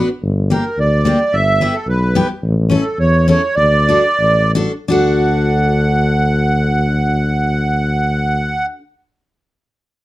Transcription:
0.22 tuba G1
0.50 steel-string acoustic guitar A#3 D4 G4, accordion A#4
0.77 tuba D2, accordion D5
1.05 steel-string acoustic guitar A#3 D4 G4
1.32 tuba G1, accordion E5
1.61 steel-string acoustic guitar B3 E4 G4
1.74 accordion A4
1.87 tuba B1, accordion B4
2.15 steel-string acoustic guitar B3 E4 G4
2.43 tuba A1
2.70 steel-string acoustic guitar C#4 E4 A4
2.76 accordion A4
2.98 tuba E2, accordion C#5
3.28 steel-string acoustic guitar C#4 E4 A4, accordion C#5
3.55 tuba D2, accordion D5
3.89 steel-string acoustic guitar D4 F#4 A4
4.19 tuba A1
4.55 steel-string acoustic guitar D4 F#4 A4
4.88 tuba D2, steel-string acoustic guitar D4 F#4 A4, accordion F#5

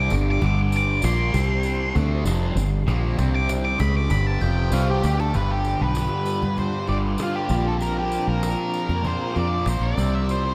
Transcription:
Already playing: distorted electric guitar C3 G3 C4, string machine G3 D4 G4
0.00 lead electric guitar D6
0.10 fingered electric bass G1, distorted electric guitar G2 D3 G3, cajon bass, tambourine
0.31 lead electric guitar D6
0.41 fingered electric bass G1, distorted electric guitar G2 D3 G3, cajon bass, tambourine
0.46 lead electric guitar D6
0.72 cajon slap, tambourine
0.77 lead electric guitar D6
1.02 fingered electric bass A#1, distorted electric guitar A#2 F3 A#3, lead electric guitar C6, cajon slap, tambourine
1.33 fingered electric bass C2, distorted electric guitar C3 G3 C4, string machine G3 C4 C5, cajon bass, tambourine
1.63 cajon slap, tambourine
1.95 fingered electric bass D2, distorted electric guitar D3 A3 D4, string machine D4, cajon bass, tambourine
2.25 fingered electric bass F1, distorted electric guitar F2 C3 F3, cajon slap, tambourine
2.56 fingered electric bass G1, distorted electric guitar G2 D3, cajon slap, tambourine
2.87 fingered electric bass A#1, distorted electric guitar A#2 F3 A#3, cajon bass, tambourine
3.17 fingered electric bass C2, distorted electric guitar C3 G3 C4, string machine C4 C5, cajon bass, tambourine
3.35 lead electric guitar D6
3.49 cajon slap, tambourine
3.65 lead electric guitar D6, cajon slap
3.79 fingered electric bass C#2, distorted electric guitar C#3 G#3 C#4, string machine G4 B4, lead electric guitar B5, cajon bass, tambourine
3.97 lead electric guitar D6
4.09 fingered electric bass G1, distorted electric guitar G2 D3 G3, lead electric guitar B5, cajon bass, tambourine
4.27 lead electric guitar A5
4.41 fingered electric bass F1, distorted electric guitar F2 C3 F3, lead electric guitar G5, cajon slap, tambourine
4.71 fingered electric bass C2, distorted electric guitar C3 G3 C4, lead electric guitar F4, cajon slap, tambourine
4.91 lead electric guitar G4
5.03 fingered electric bass D2, distorted electric guitar D3 A3 D4, cajon slap, tambourine
5.20 lead electric guitar A4, cajon slap
5.34 fingered electric bass G1, distorted electric guitar G2 D3 G3, string machine G3 D4 F4 G4, lead electric guitar B4, cajon bass, tambourine
5.51 lead electric guitar G4
5.65 cajon slap, tambourine
5.81 fingered electric bass B1, lead electric guitar B4
5.95 cajon slap, tambourine
6.25 cajon slap, tambourine
6.43 fingered electric bass G2, cajon bass
6.57 lead electric guitar C5, cajon bass, tambourine
6.87 fingered electric bass G1, distorted electric guitar G2 D3 G3, lead electric guitar D5, cajon slap, tambourine
7.18 distorted electric guitar G2 D3 G3, cajon slap, tambourine
7.23 lead electric guitar F4
7.35 lead electric guitar G4
7.48 fingered electric bass A#1, distorted electric guitar A#2 F3 A#3, string machine C4 A#4, cajon bass, tambourine
7.66 lead electric guitar A4, cajon slap
7.80 lead electric guitar A#4, cajon slap, tambourine
7.99 lead electric guitar G4
8.12 cajon slap, tambourine
8.27 fingered electric bass A#1, lead electric guitar A#4
8.43 cajon slap, tambourine
8.74 cajon slap, tambourine
8.89 fingered electric bass F2, cajon bass
9.03 distorted electric guitar A#2 F3 A#3, cajon bass, tambourine
9.07 lead electric guitar C5
9.19 cajon slap
9.34 fingered electric bass F2, distorted electric guitar A#2 F3 A#3, cajon slap, tambourine
9.39 lead electric guitar D5
9.66 fingered electric bass A#1, lead electric guitar C5, cajon slap, tambourine
9.80 fingered electric bass A#1, lead electric guitar D5
9.96 fingered electric bass C2, distorted electric guitar C3 G3 C4, string machine E4 G4 B5, cajon bass, tambourine
10.15 lead electric guitar E5
10.28 lead electric guitar C5, cajon slap, tambourine

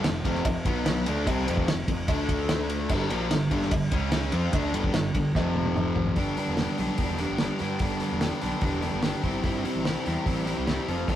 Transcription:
0.04 fingered electric bass F1, overdriven electric guitar F2 C3, snare, ride, cowbell
0.25 fingered electric bass F1, overdriven electric guitar F2 C3 F3, kick, ride
0.35 snare
0.45 fingered electric bass F1, overdriven electric guitar F2 C3, kick, ride, cowbell
0.65 fingered electric bass B1, overdriven electric guitar B2 F#3 B3, kick, ride
0.86 snare, ride, cowbell
1.06 fingered electric bass D2, overdriven electric guitar D3 A3 D4, ride
1.27 fingered electric bass C2, overdriven electric guitar C3 G3 C4, kick, ride, cowbell
1.46 fingered electric bass F1, overdriven electric guitar F2 C3 F3, ride
1.57 kick
1.67 fingered electric bass F1, overdriven electric guitar F2 C3, snare, ride, cowbell
1.88 fingered electric bass F1, overdriven electric guitar F2 C3, kick, ride
2.08 fingered electric bass D2, overdriven electric guitar D3 A3 D4, kick, ride, cowbell
2.29 kick, ride
2.49 snare, ride, cowbell
2.70 ride
2.89 fingered electric bass G1, overdriven electric guitar G2 D3 G3, kick, cowbell, crash
3.10 fingered electric bass A#1, overdriven electric guitar A#2 F3 A#3, ride
3.31 fingered electric bass G1, overdriven electric guitar G2 D3, snare, ride, cowbell
3.51 fingered electric bass G1, overdriven electric guitar G2 D3 G3, kick, ride
3.62 snare
3.71 fingered electric bass G1, overdriven electric guitar G2 D3, kick, ride, cowbell
3.92 fingered electric bass C#2, overdriven electric guitar C#3 G#3 C#4, kick, ride
4.12 snare, ride, cowbell
4.32 fingered electric bass F2, overdriven electric guitar F3 C4 F4, ride
4.53 fingered electric bass D2, overdriven electric guitar D3 A3 D4, kick, ride, cowbell
4.74 fingered electric bass G1, overdriven electric guitar G2 D3 G3, ride
4.84 kick
4.93 fingered electric bass G1, overdriven electric guitar G2 D3, snare, ride, cowbell
5.15 fingered electric bass G1, overdriven electric guitar G2 D3, kick, ride
5.35 fingered electric bass F1, overdriven electric guitar F2 C3 F3, kick, snare, cowbell
5.55 high tom
5.66 high tom
5.76 mid tom, cowbell
5.96 floor tom
6.06 floor tom
6.16 fingered electric bass G1, distorted electric guitar G2 D3, overdriven electric guitar G3 B3 D4 G4, kick, open hi-hat
6.37 distorted electric guitar G2 D3, overdriven electric guitar G3 B3 D4 G4, open hi-hat
6.48 fingered electric bass E1
6.57 distorted electric guitar G2 D3, overdriven electric guitar G3 B3 D4 G4, snare, open hi-hat
6.78 fingered electric bass B1, distorted electric guitar G2 D3, overdriven electric guitar G3 B3 D4 G4, open hi-hat
6.98 fingered electric bass E1, distorted electric guitar G2 D3, overdriven electric guitar G3 B3 D4 G4, kick, open hi-hat
7.18 distorted electric guitar G2 D3, overdriven electric guitar G3 B3 D4 G4, open hi-hat
7.30 fingered electric bass G1
7.38 distorted electric guitar G2 D3, overdriven electric guitar G3 B3 D4 G4, snare, open hi-hat
7.59 distorted electric guitar G2 D3, fingered electric bass G2, overdriven electric guitar G3 B3 D4 G4, open hi-hat
7.79 fingered electric bass G1, distorted electric guitar G2 D3, overdriven electric guitar G3 B3 D4 G4, kick, open hi-hat
8.00 distorted electric guitar G2 D3, overdriven electric guitar G3 B3 D4 G4, open hi-hat
8.12 fingered electric bass E1
8.20 distorted electric guitar G2 D3, overdriven electric guitar G3 B3 D4 G4, snare, open hi-hat
8.41 fingered electric bass B1, distorted electric guitar G2 D3, overdriven electric guitar G3 B3 D4 G4, open hi-hat
8.61 fingered electric bass E1, distorted electric guitar G2 D3, overdriven electric guitar G3 B3 D4 G4, kick, open hi-hat
8.81 distorted electric guitar G2 D3, overdriven electric guitar G3 B3 D4 G4, open hi-hat
8.93 fingered electric bass G1
9.02 distorted electric guitar G2 D3, overdriven electric guitar G3 B3 D4 G4, snare, open hi-hat
9.23 fingered electric bass G1, distorted electric guitar C3, overdriven electric guitar G3 C4 E4 G4, kick, open hi-hat
9.43 fingered electric bass G1, distorted electric guitar C3, overdriven electric guitar G3 C4 E4 G4, kick, open hi-hat
9.64 distorted electric guitar C3, overdriven electric guitar G3 C4 E4 G4, open hi-hat
9.75 fingered electric bass A1
9.84 distorted electric guitar C3, overdriven electric guitar G3 C4 E4 G4, snare, open hi-hat
10.06 fingered electric bass E2, distorted electric guitar C3, overdriven electric guitar G3 C4 E4 G4, open hi-hat
10.26 fingered electric bass A1, distorted electric guitar C3, overdriven electric guitar G3 C4 E4 G4, kick, open hi-hat
10.45 distorted electric guitar C3, overdriven electric guitar G3 C4 E4 G4, open hi-hat
10.58 fingered electric bass C2
10.66 distorted electric guitar C3, overdriven electric guitar G3 C4 E4 G4, snare, open hi-hat
10.88 fingered electric bass F1, distorted electric guitar F2 C3, overdriven electric guitar F3 C4 F4 A4, open hi-hat
11.08 fingered electric bass F1, distorted electric guitar F2 C3, overdriven electric guitar F3 C4 F4 A4, kick, open hi-hat

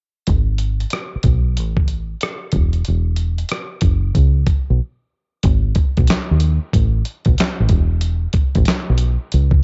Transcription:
0.27 fingered electric bass G#1, kick, closed hi-hat
0.58 closed hi-hat
0.80 closed hi-hat
0.90 cross-stick, closed hi-hat
1.16 muted fingered electric bass stroke
1.23 fingered electric bass B1, kick, closed hi-hat
1.57 fingered electric bass A1, closed hi-hat
1.77 kick
1.88 closed hi-hat
2.21 cross-stick, closed hi-hat
2.52 fingered electric bass E1, kick, closed hi-hat
2.73 closed hi-hat
2.85 fingered electric bass E1, closed hi-hat
3.16 closed hi-hat
3.38 closed hi-hat
3.49 cross-stick, closed hi-hat
3.81 fingered electric bass F#1, kick, closed hi-hat
4.15 fingered electric bass C#2, kick, closed hi-hat
4.47 kick, closed hi-hat
4.70 fingered electric bass B1
5.43 fingered electric bass G#1, kick, closed hi-hat
5.75 kick, closed hi-hat
5.97 fingered electric bass B1, kick, closed hi-hat
6.07 snare, clap, closed hi-hat
6.31 fingered electric bass D#2
6.40 closed hi-hat
6.73 fingered electric bass A1, kick, closed hi-hat
7.05 closed hi-hat
7.25 fingered electric bass B1, kick, closed hi-hat
7.38 muted fingered electric bass stroke, snare, clap, closed hi-hat
7.60 fingered electric bass A1
7.69 fingered electric bass E1, kick, closed hi-hat
8.01 closed hi-hat
8.33 kick, closed hi-hat
8.55 fingered electric bass A1, kick, closed hi-hat
8.65 muted fingered electric bass stroke, snare, clap, closed hi-hat
8.90 fingered electric bass B1
8.98 closed hi-hat
9.32 fingered electric bass C#2, closed hi-hat
9.51 kick

